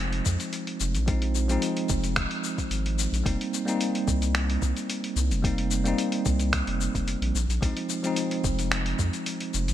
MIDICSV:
0, 0, Header, 1, 4, 480
1, 0, Start_track
1, 0, Tempo, 545455
1, 950, Time_signature, 4, 2, 24, 8
1, 8568, End_track
2, 0, Start_track
2, 0, Title_t, "Tine electric piano"
2, 0, Program_c, 0, 4
2, 0, Control_c, 0, 64, 127
2, 0, Note_on_c, 0, 53, 69
2, 0, Note_on_c, 0, 56, 66
2, 0, Note_on_c, 0, 60, 67
2, 0, Note_on_c, 0, 63, 78
2, 936, Note_off_c, 0, 53, 0
2, 936, Note_on_c, 0, 53, 69
2, 946, Note_off_c, 0, 56, 0
2, 946, Note_on_c, 0, 56, 64
2, 956, Note_off_c, 0, 60, 0
2, 956, Note_on_c, 0, 60, 60
2, 971, Note_off_c, 0, 63, 0
2, 971, Note_on_c, 0, 63, 68
2, 1279, Note_off_c, 0, 53, 0
2, 1284, Note_off_c, 0, 56, 0
2, 1289, Note_off_c, 0, 60, 0
2, 1297, Note_off_c, 0, 63, 0
2, 1304, Note_on_c, 0, 53, 75
2, 1313, Note_on_c, 0, 56, 65
2, 1326, Note_on_c, 0, 60, 68
2, 1336, Note_on_c, 0, 63, 80
2, 1490, Note_off_c, 0, 53, 0
2, 1495, Note_off_c, 0, 56, 0
2, 1501, Note_off_c, 0, 60, 0
2, 1506, Note_off_c, 0, 63, 0
2, 2849, Note_on_c, 0, 55, 69
2, 2859, Note_on_c, 0, 58, 61
2, 2872, Note_on_c, 0, 60, 59
2, 2882, Control_c, 0, 64, 0
2, 2883, Note_on_c, 0, 63, 68
2, 3026, Control_c, 0, 64, 127
2, 3196, Note_off_c, 0, 55, 0
2, 3201, Note_off_c, 0, 58, 0
2, 3207, Note_off_c, 0, 60, 0
2, 3213, Note_off_c, 0, 63, 0
2, 3215, Note_on_c, 0, 55, 70
2, 3225, Note_on_c, 0, 58, 67
2, 3237, Note_on_c, 0, 60, 62
2, 3248, Note_on_c, 0, 63, 79
2, 3406, Note_off_c, 0, 55, 0
2, 3411, Note_off_c, 0, 58, 0
2, 3417, Note_off_c, 0, 60, 0
2, 3422, Note_off_c, 0, 63, 0
2, 4772, Note_on_c, 0, 55, 65
2, 4785, Note_on_c, 0, 58, 64
2, 4796, Note_on_c, 0, 60, 61
2, 4810, Note_on_c, 0, 63, 71
2, 5117, Note_off_c, 0, 55, 0
2, 5124, Note_off_c, 0, 58, 0
2, 5129, Note_off_c, 0, 60, 0
2, 5136, Note_off_c, 0, 63, 0
2, 5137, Note_on_c, 0, 55, 73
2, 5147, Note_on_c, 0, 58, 69
2, 5160, Note_on_c, 0, 60, 70
2, 5172, Note_on_c, 0, 63, 81
2, 5327, Note_off_c, 0, 55, 0
2, 5332, Note_off_c, 0, 58, 0
2, 5338, Note_off_c, 0, 60, 0
2, 5344, Note_off_c, 0, 63, 0
2, 6483, Control_c, 0, 64, 0
2, 6647, Control_c, 0, 64, 127
2, 6696, Note_on_c, 0, 53, 68
2, 6707, Note_on_c, 0, 56, 61
2, 6719, Note_on_c, 0, 60, 66
2, 6735, Note_on_c, 0, 63, 78
2, 7039, Note_off_c, 0, 53, 0
2, 7045, Note_off_c, 0, 56, 0
2, 7051, Note_off_c, 0, 60, 0
2, 7058, Note_off_c, 0, 63, 0
2, 7064, Note_on_c, 0, 53, 71
2, 7075, Note_on_c, 0, 56, 62
2, 7088, Note_on_c, 0, 60, 70
2, 7100, Note_on_c, 0, 63, 84
2, 7250, Note_off_c, 0, 53, 0
2, 7256, Note_off_c, 0, 56, 0
2, 7262, Note_off_c, 0, 60, 0
2, 7268, Note_off_c, 0, 63, 0
2, 8568, End_track
3, 0, Start_track
3, 0, Title_t, "Analog synth bass"
3, 0, Program_c, 1, 38
3, 0, Note_on_c, 1, 29, 94
3, 189, Note_off_c, 1, 29, 0
3, 231, Note_on_c, 1, 41, 81
3, 330, Note_off_c, 1, 41, 0
3, 710, Note_on_c, 1, 29, 91
3, 835, Note_on_c, 1, 34, 96
3, 848, Note_off_c, 1, 29, 0
3, 1391, Note_off_c, 1, 34, 0
3, 1672, Note_on_c, 1, 29, 90
3, 1994, Note_off_c, 1, 29, 0
3, 2383, Note_on_c, 1, 32, 79
3, 2709, Note_off_c, 1, 32, 0
3, 2749, Note_on_c, 1, 34, 80
3, 2842, Note_off_c, 1, 34, 0
3, 2869, Note_on_c, 1, 29, 96
3, 2969, Note_off_c, 1, 29, 0
3, 3587, Note_on_c, 1, 36, 90
3, 4030, Note_off_c, 1, 36, 0
3, 4065, Note_on_c, 1, 36, 78
3, 4167, Note_off_c, 1, 36, 0
3, 4543, Note_on_c, 1, 36, 94
3, 4669, Note_on_c, 1, 29, 97
3, 4682, Note_off_c, 1, 36, 0
3, 5227, Note_off_c, 1, 29, 0
3, 5509, Note_on_c, 1, 36, 93
3, 5833, Note_off_c, 1, 36, 0
3, 5875, Note_on_c, 1, 29, 94
3, 6062, Note_off_c, 1, 29, 0
3, 6113, Note_on_c, 1, 29, 75
3, 6301, Note_off_c, 1, 29, 0
3, 6352, Note_on_c, 1, 34, 89
3, 6444, Note_off_c, 1, 34, 0
3, 6468, Note_on_c, 1, 34, 75
3, 6568, Note_off_c, 1, 34, 0
3, 6587, Note_on_c, 1, 34, 81
3, 6682, Note_off_c, 1, 34, 0
3, 6708, Note_on_c, 1, 34, 91
3, 6808, Note_off_c, 1, 34, 0
3, 7428, Note_on_c, 1, 29, 89
3, 7870, Note_off_c, 1, 29, 0
3, 7912, Note_on_c, 1, 41, 80
3, 8011, Note_off_c, 1, 41, 0
3, 8398, Note_on_c, 1, 29, 90
3, 8523, Note_on_c, 1, 34, 103
3, 8536, Note_off_c, 1, 29, 0
3, 8568, Note_off_c, 1, 34, 0
3, 8568, End_track
4, 0, Start_track
4, 0, Title_t, "Drums"
4, 110, Note_on_c, 9, 42, 39
4, 198, Note_off_c, 9, 42, 0
4, 225, Note_on_c, 9, 82, 77
4, 228, Note_on_c, 9, 36, 61
4, 313, Note_off_c, 9, 82, 0
4, 316, Note_off_c, 9, 36, 0
4, 351, Note_on_c, 9, 42, 28
4, 352, Note_on_c, 9, 82, 43
4, 439, Note_off_c, 9, 42, 0
4, 440, Note_off_c, 9, 82, 0
4, 464, Note_on_c, 9, 42, 56
4, 465, Note_on_c, 9, 82, 32
4, 552, Note_off_c, 9, 42, 0
4, 553, Note_off_c, 9, 82, 0
4, 592, Note_on_c, 9, 42, 38
4, 680, Note_off_c, 9, 42, 0
4, 707, Note_on_c, 9, 82, 81
4, 795, Note_off_c, 9, 82, 0
4, 832, Note_on_c, 9, 42, 28
4, 834, Note_on_c, 9, 82, 43
4, 920, Note_off_c, 9, 42, 0
4, 922, Note_off_c, 9, 82, 0
4, 948, Note_on_c, 9, 42, 62
4, 950, Note_on_c, 9, 36, 104
4, 950, Note_on_c, 9, 82, 32
4, 1036, Note_off_c, 9, 42, 0
4, 1038, Note_off_c, 9, 36, 0
4, 1038, Note_off_c, 9, 82, 0
4, 1072, Note_on_c, 9, 42, 37
4, 1160, Note_off_c, 9, 42, 0
4, 1188, Note_on_c, 9, 82, 76
4, 1276, Note_off_c, 9, 82, 0
4, 1315, Note_on_c, 9, 42, 29
4, 1317, Note_on_c, 9, 82, 44
4, 1403, Note_off_c, 9, 42, 0
4, 1405, Note_off_c, 9, 82, 0
4, 1426, Note_on_c, 9, 42, 63
4, 1427, Note_on_c, 9, 82, 33
4, 1514, Note_off_c, 9, 42, 0
4, 1515, Note_off_c, 9, 82, 0
4, 1554, Note_on_c, 9, 42, 40
4, 1642, Note_off_c, 9, 42, 0
4, 1663, Note_on_c, 9, 82, 74
4, 1669, Note_on_c, 9, 36, 100
4, 1751, Note_off_c, 9, 82, 0
4, 1757, Note_off_c, 9, 36, 0
4, 1791, Note_on_c, 9, 42, 27
4, 1793, Note_on_c, 9, 82, 41
4, 1879, Note_off_c, 9, 42, 0
4, 1881, Note_off_c, 9, 82, 0
4, 1903, Note_on_c, 9, 26, 68
4, 1903, Note_on_c, 9, 42, 58
4, 1904, Note_on_c, 9, 82, 32
4, 1909, Note_on_c, 9, 36, 101
4, 1991, Note_off_c, 9, 26, 0
4, 1991, Note_off_c, 9, 42, 0
4, 1992, Note_off_c, 9, 82, 0
4, 1997, Note_off_c, 9, 36, 0
4, 2031, Note_on_c, 9, 42, 39
4, 2119, Note_off_c, 9, 42, 0
4, 2146, Note_on_c, 9, 82, 74
4, 2234, Note_off_c, 9, 82, 0
4, 2273, Note_on_c, 9, 36, 60
4, 2274, Note_on_c, 9, 42, 28
4, 2275, Note_on_c, 9, 82, 41
4, 2361, Note_off_c, 9, 36, 0
4, 2362, Note_off_c, 9, 42, 0
4, 2363, Note_off_c, 9, 82, 0
4, 2385, Note_on_c, 9, 42, 55
4, 2387, Note_on_c, 9, 82, 31
4, 2473, Note_off_c, 9, 42, 0
4, 2475, Note_off_c, 9, 82, 0
4, 2515, Note_on_c, 9, 42, 38
4, 2603, Note_off_c, 9, 42, 0
4, 2630, Note_on_c, 9, 82, 78
4, 2718, Note_off_c, 9, 82, 0
4, 2761, Note_on_c, 9, 42, 27
4, 2762, Note_on_c, 9, 82, 43
4, 2849, Note_off_c, 9, 42, 0
4, 2850, Note_off_c, 9, 82, 0
4, 2867, Note_on_c, 9, 36, 104
4, 2870, Note_on_c, 9, 42, 64
4, 2872, Note_on_c, 9, 82, 32
4, 2955, Note_off_c, 9, 36, 0
4, 2958, Note_off_c, 9, 42, 0
4, 2960, Note_off_c, 9, 82, 0
4, 3001, Note_on_c, 9, 42, 39
4, 3089, Note_off_c, 9, 42, 0
4, 3115, Note_on_c, 9, 82, 72
4, 3203, Note_off_c, 9, 82, 0
4, 3237, Note_on_c, 9, 42, 27
4, 3238, Note_on_c, 9, 82, 40
4, 3325, Note_off_c, 9, 42, 0
4, 3326, Note_off_c, 9, 82, 0
4, 3350, Note_on_c, 9, 42, 60
4, 3351, Note_on_c, 9, 82, 32
4, 3438, Note_off_c, 9, 42, 0
4, 3439, Note_off_c, 9, 82, 0
4, 3477, Note_on_c, 9, 42, 40
4, 3565, Note_off_c, 9, 42, 0
4, 3587, Note_on_c, 9, 36, 94
4, 3591, Note_on_c, 9, 82, 72
4, 3675, Note_off_c, 9, 36, 0
4, 3679, Note_off_c, 9, 82, 0
4, 3714, Note_on_c, 9, 42, 28
4, 3715, Note_on_c, 9, 82, 40
4, 3802, Note_off_c, 9, 42, 0
4, 3803, Note_off_c, 9, 82, 0
4, 3826, Note_on_c, 9, 26, 68
4, 3826, Note_on_c, 9, 42, 57
4, 3827, Note_on_c, 9, 82, 29
4, 3914, Note_off_c, 9, 26, 0
4, 3914, Note_off_c, 9, 42, 0
4, 3915, Note_off_c, 9, 82, 0
4, 3957, Note_on_c, 9, 42, 41
4, 4045, Note_off_c, 9, 42, 0
4, 4067, Note_on_c, 9, 36, 56
4, 4068, Note_on_c, 9, 82, 73
4, 4155, Note_off_c, 9, 36, 0
4, 4156, Note_off_c, 9, 82, 0
4, 4194, Note_on_c, 9, 42, 27
4, 4195, Note_on_c, 9, 82, 39
4, 4282, Note_off_c, 9, 42, 0
4, 4283, Note_off_c, 9, 82, 0
4, 4308, Note_on_c, 9, 42, 63
4, 4310, Note_on_c, 9, 82, 32
4, 4396, Note_off_c, 9, 42, 0
4, 4398, Note_off_c, 9, 82, 0
4, 4434, Note_on_c, 9, 42, 37
4, 4522, Note_off_c, 9, 42, 0
4, 4548, Note_on_c, 9, 82, 76
4, 4636, Note_off_c, 9, 82, 0
4, 4676, Note_on_c, 9, 42, 27
4, 4677, Note_on_c, 9, 82, 41
4, 4764, Note_off_c, 9, 42, 0
4, 4765, Note_off_c, 9, 82, 0
4, 4788, Note_on_c, 9, 36, 101
4, 4793, Note_on_c, 9, 42, 61
4, 4794, Note_on_c, 9, 82, 30
4, 4876, Note_off_c, 9, 36, 0
4, 4881, Note_off_c, 9, 42, 0
4, 4882, Note_off_c, 9, 82, 0
4, 4912, Note_on_c, 9, 42, 39
4, 5000, Note_off_c, 9, 42, 0
4, 5026, Note_on_c, 9, 82, 71
4, 5114, Note_off_c, 9, 82, 0
4, 5153, Note_on_c, 9, 42, 27
4, 5154, Note_on_c, 9, 82, 39
4, 5241, Note_off_c, 9, 42, 0
4, 5242, Note_off_c, 9, 82, 0
4, 5266, Note_on_c, 9, 42, 65
4, 5267, Note_on_c, 9, 82, 31
4, 5354, Note_off_c, 9, 42, 0
4, 5355, Note_off_c, 9, 82, 0
4, 5387, Note_on_c, 9, 42, 43
4, 5475, Note_off_c, 9, 42, 0
4, 5506, Note_on_c, 9, 82, 73
4, 5507, Note_on_c, 9, 36, 93
4, 5594, Note_off_c, 9, 82, 0
4, 5595, Note_off_c, 9, 36, 0
4, 5627, Note_on_c, 9, 42, 28
4, 5629, Note_on_c, 9, 82, 39
4, 5715, Note_off_c, 9, 42, 0
4, 5717, Note_off_c, 9, 82, 0
4, 5745, Note_on_c, 9, 26, 67
4, 5745, Note_on_c, 9, 42, 62
4, 5746, Note_on_c, 9, 82, 30
4, 5749, Note_on_c, 9, 36, 93
4, 5833, Note_off_c, 9, 26, 0
4, 5833, Note_off_c, 9, 42, 0
4, 5834, Note_off_c, 9, 82, 0
4, 5837, Note_off_c, 9, 36, 0
4, 5873, Note_on_c, 9, 42, 41
4, 5961, Note_off_c, 9, 42, 0
4, 5992, Note_on_c, 9, 82, 71
4, 6080, Note_off_c, 9, 82, 0
4, 6115, Note_on_c, 9, 36, 55
4, 6117, Note_on_c, 9, 42, 28
4, 6118, Note_on_c, 9, 82, 40
4, 6203, Note_off_c, 9, 36, 0
4, 6205, Note_off_c, 9, 42, 0
4, 6206, Note_off_c, 9, 82, 0
4, 6227, Note_on_c, 9, 42, 61
4, 6229, Note_on_c, 9, 82, 29
4, 6315, Note_off_c, 9, 42, 0
4, 6317, Note_off_c, 9, 82, 0
4, 6356, Note_on_c, 9, 42, 39
4, 6444, Note_off_c, 9, 42, 0
4, 6473, Note_on_c, 9, 82, 75
4, 6561, Note_off_c, 9, 82, 0
4, 6600, Note_on_c, 9, 42, 30
4, 6601, Note_on_c, 9, 82, 41
4, 6688, Note_off_c, 9, 42, 0
4, 6689, Note_off_c, 9, 82, 0
4, 6708, Note_on_c, 9, 36, 97
4, 6712, Note_on_c, 9, 42, 65
4, 6713, Note_on_c, 9, 82, 30
4, 6796, Note_off_c, 9, 36, 0
4, 6800, Note_off_c, 9, 42, 0
4, 6801, Note_off_c, 9, 82, 0
4, 6834, Note_on_c, 9, 42, 41
4, 6922, Note_off_c, 9, 42, 0
4, 6948, Note_on_c, 9, 82, 73
4, 7036, Note_off_c, 9, 82, 0
4, 7075, Note_on_c, 9, 42, 30
4, 7076, Note_on_c, 9, 82, 41
4, 7163, Note_off_c, 9, 42, 0
4, 7164, Note_off_c, 9, 82, 0
4, 7185, Note_on_c, 9, 42, 69
4, 7186, Note_on_c, 9, 82, 33
4, 7273, Note_off_c, 9, 42, 0
4, 7274, Note_off_c, 9, 82, 0
4, 7315, Note_on_c, 9, 42, 43
4, 7403, Note_off_c, 9, 42, 0
4, 7430, Note_on_c, 9, 36, 89
4, 7431, Note_on_c, 9, 82, 69
4, 7518, Note_off_c, 9, 36, 0
4, 7519, Note_off_c, 9, 82, 0
4, 7556, Note_on_c, 9, 42, 31
4, 7558, Note_on_c, 9, 82, 39
4, 7644, Note_off_c, 9, 42, 0
4, 7646, Note_off_c, 9, 82, 0
4, 7670, Note_on_c, 9, 26, 74
4, 7670, Note_on_c, 9, 42, 66
4, 7671, Note_on_c, 9, 82, 30
4, 7758, Note_off_c, 9, 26, 0
4, 7758, Note_off_c, 9, 42, 0
4, 7759, Note_off_c, 9, 82, 0
4, 7795, Note_on_c, 9, 42, 44
4, 7883, Note_off_c, 9, 42, 0
4, 7911, Note_on_c, 9, 36, 55
4, 7913, Note_on_c, 9, 82, 65
4, 7999, Note_off_c, 9, 36, 0
4, 8001, Note_off_c, 9, 82, 0
4, 8037, Note_on_c, 9, 42, 28
4, 8039, Note_on_c, 9, 82, 40
4, 8125, Note_off_c, 9, 42, 0
4, 8127, Note_off_c, 9, 82, 0
4, 8152, Note_on_c, 9, 42, 65
4, 8153, Note_on_c, 9, 82, 29
4, 8240, Note_off_c, 9, 42, 0
4, 8241, Note_off_c, 9, 82, 0
4, 8276, Note_on_c, 9, 42, 40
4, 8364, Note_off_c, 9, 42, 0
4, 8395, Note_on_c, 9, 82, 74
4, 8483, Note_off_c, 9, 82, 0
4, 8520, Note_on_c, 9, 42, 32
4, 8522, Note_on_c, 9, 82, 41
4, 8568, Note_off_c, 9, 42, 0
4, 8568, Note_off_c, 9, 82, 0
4, 8568, End_track
0, 0, End_of_file